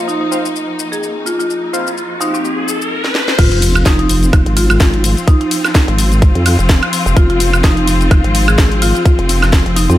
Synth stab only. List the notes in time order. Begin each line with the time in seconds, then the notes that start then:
0.32 C4 F4 C5 F5
1.73 C4 F4 C5 F5
2.20 C4 F4 C5 F5